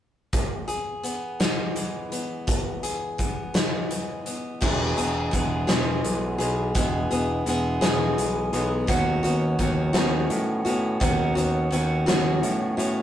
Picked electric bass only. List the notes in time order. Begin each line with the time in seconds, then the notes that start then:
4.62 E1
4.98 E1
5.33 E1
5.69 E1
6.05 B1
6.40 B1
6.75 E1
7.11 E1
7.47 E1
7.82 E1
8.18 B1
8.53 B1
8.89 D#2
9.24 D#2
9.59 D#2
9.95 D#2
10.30 A2
10.66 A2
11.01 D#2
11.36 D#2
11.72 D#2
12.08 D#2
12.43 A2
12.78 A2